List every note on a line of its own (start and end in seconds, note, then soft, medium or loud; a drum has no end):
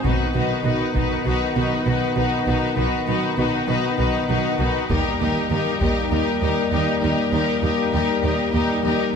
0.04 0.14 B1 soft
0.04 0.12 B2 soft
0.04 4.73 D#3 soft
0.04 4.73 B3 soft
0.04 0.34 D#4 soft
0.04 0.34 F#4 soft
0.04 0.35 B4 soft
0.04 taiko soft
0.34 0.44 B1 soft
0.34 0.42 B2 soft
0.34 0.65 D#4 soft
0.34 0.63 F#4 soft
0.34 0.66 B4 soft
0.64 0.74 B1 soft
0.64 0.72 B2 soft
0.64 0.95 D#4 soft
0.64 0.94 F#4 soft
0.64 0.96 B4 soft
0.94 1.04 B1 soft
0.94 1.02 B2 soft
0.94 1.26 D#4 soft
0.94 1.25 F#4 soft
0.94 1.26 B4 soft
0.94 taiko soft
1.25 1.34 B1 soft
1.25 1.33 B2 soft
1.25 1.55 D#4 soft
1.25 1.55 F#4 soft
1.25 1.56 B4 soft
1.55 1.65 B1 soft
1.55 1.63 B2 soft
1.55 1.85 D#4 soft
1.55 1.85 F#4 soft
1.55 1.87 B4 soft
1.86 1.95 B1 soft
1.86 1.94 B2 soft
1.86 2.16 D#4 soft
1.86 2.17 F#4 soft
1.86 2.16 B4 soft
2.16 2.25 B1 soft
2.16 2.24 B2 soft
2.16 2.46 D#4 soft
2.16 2.47 F#4 soft
2.16 2.45 B4 soft
2.46 2.54 B1 soft
2.46 2.55 B2 soft
2.46 2.76 D#4 soft
2.46 2.77 F#4 soft
2.46 2.77 B4 soft
2.77 2.85 B1 soft
2.77 2.85 B2 soft
2.77 3.07 D#4 soft
2.77 3.07 F#4 soft
2.77 3.06 B4 soft
3.07 3.15 B1 soft
3.07 3.15 B2 soft
3.07 3.37 D#4 soft
3.07 3.36 F#4 soft
3.07 3.38 B4 soft
3.37 3.46 B1 soft
3.37 3.45 B2 soft
3.37 3.67 D#4 soft
3.37 3.67 F#4 soft
3.37 3.67 B4 soft
3.68 3.77 B1 soft
3.68 3.76 B2 soft
3.68 3.96 D#4 soft
3.68 3.98 F#4 soft
3.68 3.98 B4 soft
3.98 4.07 B1 soft
3.98 4.06 B2 soft
3.98 4.28 D#4 soft
3.98 4.28 F#4 soft
3.98 4.29 B4 soft
4.29 4.37 B1 soft
4.29 4.37 B2 soft
4.29 4.58 D#4 soft
4.29 4.58 F#4 soft
4.29 4.59 B4 soft
4.59 4.68 B1 soft
4.59 4.67 B2 soft
4.59 4.88 D#4 soft
4.59 4.89 F#4 soft
4.59 4.90 B4 soft
4.89 4.98 D#2 medium
4.89 4.99 D#2 medium
4.89 9.16 G3 soft
4.89 9.16 A#3 medium
4.89 5.19 D#4 soft
4.89 5.19 G4 soft
4.89 5.20 A#4 soft
4.89 taiko soft
5.20 5.29 D#2 soft
5.20 5.50 D#4 soft
5.20 5.50 G4 soft
5.20 5.51 A#4 soft
5.50 5.58 D#2 soft
5.50 5.59 D#2 soft
5.50 5.80 D#4 soft
5.50 5.79 G4 soft
5.50 5.81 A#4 soft
5.80 5.88 D#2 soft
5.80 5.89 D#2 soft
5.80 6.10 D#4 soft
5.80 6.09 G4 soft
5.80 6.10 A#4 soft
5.80 taiko soft
6.10 6.19 D#2 soft
6.10 6.20 D#2 medium
6.10 6.40 D#4 soft
6.10 6.41 G4 soft
6.10 6.41 A#4 soft
6.42 6.50 D#2 soft
6.42 6.70 D#4 soft
6.42 6.70 G4 soft
6.42 6.72 A#4 soft
6.72 6.80 D#2 soft
6.72 7.01 D#4 soft
6.72 7.00 G4 soft
6.72 7.01 A#4 soft
7.01 7.10 D#2 soft
7.01 7.11 D#2 soft
7.01 7.32 D#4 soft
7.01 7.31 G4 soft
7.01 7.32 A#4 soft
7.32 7.40 D#2 medium
7.32 7.41 D#2 medium
7.32 7.61 D#4 soft
7.32 7.62 G4 soft
7.32 7.62 A#4 soft
7.62 7.71 D#2 soft
7.62 7.91 D#4 soft
7.62 7.91 G4 soft
7.62 7.92 A#4 soft
7.93 8.01 D#2 soft
7.93 8.22 D#4 soft
7.93 8.21 G4 soft
7.93 8.23 A#4 soft
8.22 8.31 D#2 soft
8.22 8.32 D#2 soft
8.22 8.53 D#4 soft
8.22 8.52 G4 soft
8.22 8.53 A#4 soft
8.53 8.61 D#2 soft
8.53 8.62 D#2 soft
8.53 8.83 D#4 soft
8.53 8.82 G4 soft
8.53 8.84 A#4 soft
8.83 8.91 D#2 soft
8.83 8.92 D#2 soft
8.83 9.13 D#4 soft
8.83 9.13 G4 soft
8.83 9.14 A#4 soft